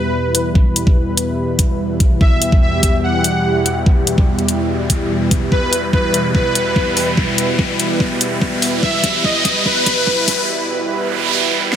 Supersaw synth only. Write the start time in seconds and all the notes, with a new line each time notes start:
Already playing: B4
2.21 E5
2.62 E5
3.04 F#5
5.52 B4
5.93 B4
6.35 B4
8.83 E5
9.24 D#5
9.66 B4